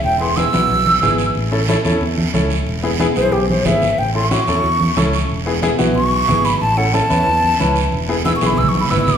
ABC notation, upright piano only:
X:1
M:4/4
L:1/8
Q:1/4=183
K:A
V:1 name="Upright piano"
z [B,EG] [B,EG] [B,EF] z2 [B,EG] z | z [CEA] [CEA] [CEA] z2 [CEA] z | z [B,EG] [B,EG] [B,EG] z2 [B,EG] z | z [CEA] [CEF] [CEA] z2 [CEA] z |
z [B,EG] [B,EG] [B,EF] z2 [B,EG] z | z [CEA] [CEA] [CEB] z2 [CEB] z | z [B,EG] [B,EG] [B,EG] z2 [B,EB] z |]